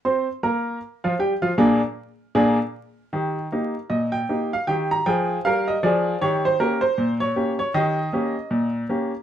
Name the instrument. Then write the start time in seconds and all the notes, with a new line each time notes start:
upright piano
0.05 C4 C5 C6
0.43 A#3 A#4 A#5
1.04 F3 F4 F5
1.19 G3 G4 G5
1.42 F3 F4 F5
1.58 A#2 A#3 D4 G#4
2.35 A#2 A#3 D4 G#4
3.13 D#3 G4
3.52 A#3 D#4 G4
3.90 A#2 D#5
4.12 G5
4.29 A#3 D#4 G4
4.53 F5
4.67 D#3 G4 G5
4.91 A#5
5.06 F3 G#4 G5
5.45 G3 A#4 F5
5.68 D#5
5.83 F3 G#4 D5
6.21 D#3 G4 C#5
6.45 C5
6.60 A#3 C#4 G4 A#4
6.81 C5
6.98 A#2
7.20 C#5
7.36 A#3 C#4 G4
7.59 C#5
7.74 D#3 G4 D#5
8.13 A#3 C#4 G4
8.51 A#2
8.89 A#3 C#4 G4